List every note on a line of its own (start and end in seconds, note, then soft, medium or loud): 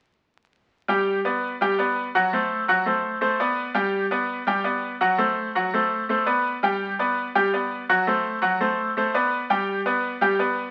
0.88 1.18 G3 medium
0.88 1.19 G4 medium
0.88 1.19 G5 medium
1.25 1.54 B3 medium
1.25 1.54 B4 medium
1.25 1.55 D5 medium
1.61 1.76 G3 medium
1.61 1.76 G4 medium
1.61 1.76 G5 medium
1.79 2.08 B3 medium
1.79 2.08 B4 medium
1.79 2.09 D5 medium
2.15 2.30 F#3 medium
2.15 2.30 F#4 medium
2.15 2.30 F#5 medium
2.33 2.62 A3 medium
2.33 2.62 A4 medium
2.33 2.62 C5 medium
2.68 2.83 F#3 medium
2.68 2.83 F#4 medium
2.68 2.83 F#5 medium
2.86 3.15 A3 medium
2.86 3.16 A4 medium
2.86 3.16 C5 medium
3.21 3.36 A3 medium
3.21 3.36 A4 medium
3.21 3.37 C5 medium
3.40 3.69 B3 medium
3.40 3.69 B4 medium
3.40 3.70 D5 medium
3.75 4.04 G3 medium
3.75 4.05 G4 medium
3.75 4.05 G5 medium
4.11 4.41 B3 medium
4.11 4.41 B4 medium
4.11 4.41 D5 medium
4.47 4.62 G3 medium
4.47 4.62 G4 medium
4.47 4.62 G5 medium
4.64 4.94 B3 medium
4.64 4.94 B4 medium
4.64 4.95 D5 medium
5.01 5.16 F#3 medium
5.01 5.16 F#4 medium
5.01 5.16 F#5 medium
5.18 5.48 A3 medium
5.18 5.48 A4 medium
5.18 5.48 C5 medium
5.55 5.70 F#3 medium
5.55 5.70 F#4 medium
5.55 5.70 F#5 medium
5.74 6.03 A3 medium
5.74 6.03 A4 medium
5.74 6.03 C5 medium
6.09 6.24 A3 medium
6.09 6.24 A4 medium
6.09 6.24 C5 medium
6.26 6.56 B3 medium
6.26 6.56 B4 medium
6.26 6.56 D5 medium
6.63 6.92 G3 medium
6.63 6.92 G4 medium
6.63 6.93 G5 medium
6.99 7.28 B3 medium
6.99 7.28 B4 medium
6.99 7.29 D5 medium
7.35 7.50 G3 medium
7.35 7.50 G4 medium
7.35 7.50 G5 medium
7.53 7.82 B3 medium
7.53 7.83 B4 medium
7.53 7.83 D5 medium
7.89 8.04 F#3 medium
7.89 8.04 F#4 medium
7.89 8.04 F#5 medium
8.07 8.36 A3 medium
8.07 8.36 A4 medium
8.07 8.37 C5 medium
8.42 8.57 F#3 medium
8.42 8.57 F#4 medium
8.42 8.57 F#5 medium
8.60 8.90 A3 medium
8.60 8.90 A4 medium
8.60 8.90 C5 medium
8.97 9.11 A3 medium
8.97 9.12 A4 medium
8.97 9.12 C5 medium
9.14 9.44 B3 medium
9.14 9.44 B4 medium
9.14 9.44 D5 medium
9.50 9.79 G3 medium
9.50 9.80 G4 medium
9.50 9.80 G5 medium
9.86 10.15 B3 medium
9.86 10.15 B4 medium
9.86 10.15 D5 medium
10.21 10.36 G3 medium
10.21 10.36 G4 medium
10.21 10.37 G5 medium
10.39 10.69 B3 medium
10.39 10.69 B4 medium
10.39 10.69 D5 medium